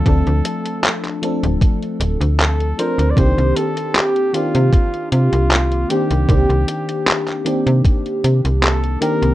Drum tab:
HH |xxxxxxxxxxxxxxxx|xxxxxxxxxxxxxxxx|xxxxxxxxxxxxxxxx|
CP |----xx------x---|----x-------x---|----xx------x---|
BD |o-------o-------|o-------o-------|o-------o-------|